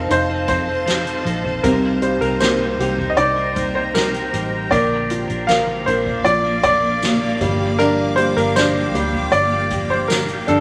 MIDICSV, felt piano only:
0, 0, Header, 1, 2, 480
1, 0, Start_track
1, 0, Key_signature, -2, "major"
1, 0, Tempo, 769231
1, 1022, Time_signature, 4, 2, 24, 8
1, 6616, End_track
2, 0, Start_track
2, 0, Title_t, "Felt piano"
2, 0, Program_c, 0, 0
2, 0, Control_c, 0, 64, 127
2, 0, Note_on_c, 0, 53, 71
2, 0, Note_on_c, 0, 60, 46
2, 0, Note_on_c, 0, 63, 54
2, 0, Note_on_c, 0, 72, 58
2, 58, Note_off_c, 0, 63, 0
2, 58, Note_on_c, 0, 63, 53
2, 278, Note_off_c, 0, 60, 0
2, 756, Note_off_c, 0, 72, 0
2, 995, Note_off_c, 0, 63, 0
2, 998, Note_off_c, 0, 53, 0
2, 1023, Note_on_c, 0, 48, 68
2, 1029, Control_c, 0, 64, 0
2, 1130, Control_c, 0, 64, 127
2, 1260, Note_on_c, 0, 55, 46
2, 1507, Note_on_c, 0, 58, 56
2, 1748, Note_on_c, 0, 67, 51
2, 1979, Note_on_c, 0, 63, 60
2, 2196, Note_off_c, 0, 55, 0
2, 2440, Note_off_c, 0, 58, 0
2, 2680, Note_off_c, 0, 67, 0
2, 2916, Note_off_c, 0, 63, 0
2, 2918, Note_off_c, 0, 48, 0
2, 2940, Note_on_c, 0, 58, 72
2, 2950, Control_c, 0, 64, 0
2, 3063, Control_c, 0, 64, 127
2, 3187, Note_on_c, 0, 65, 49
2, 3426, Note_on_c, 0, 70, 59
2, 3657, Note_off_c, 0, 58, 0
2, 3666, Note_on_c, 0, 58, 58
2, 3891, Note_off_c, 0, 65, 0
2, 3900, Note_on_c, 0, 65, 65
2, 4359, Note_off_c, 0, 70, 0
2, 4599, Note_off_c, 0, 58, 0
2, 4600, Note_off_c, 0, 65, 0
2, 4626, Note_on_c, 0, 55, 71
2, 4630, Control_c, 0, 64, 0
2, 4755, Control_c, 0, 64, 127
2, 4860, Note_on_c, 0, 62, 65
2, 5096, Note_off_c, 0, 55, 0
2, 5105, Note_on_c, 0, 55, 46
2, 5338, Note_off_c, 0, 62, 0
2, 5347, Note_on_c, 0, 62, 59
2, 5574, Note_off_c, 0, 55, 0
2, 5583, Note_on_c, 0, 55, 61
2, 6280, Note_off_c, 0, 62, 0
2, 6518, Note_off_c, 0, 55, 0
2, 6535, Note_on_c, 0, 62, 57
2, 6616, Note_off_c, 0, 62, 0
2, 6616, End_track
0, 0, End_of_file